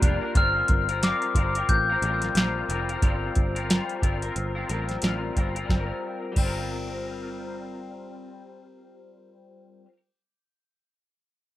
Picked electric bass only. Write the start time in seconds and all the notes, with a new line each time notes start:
0.02 F1
0.35 G1
0.69 G1
1.35 G1
1.69 A1
2.02 A1
2.35 A#1
2.69 F1
3.02 G1
3.36 G1
4.03 G1
4.36 G1
4.70 A1
5.03 A1
5.37 G1
5.69 G1
6.36 G1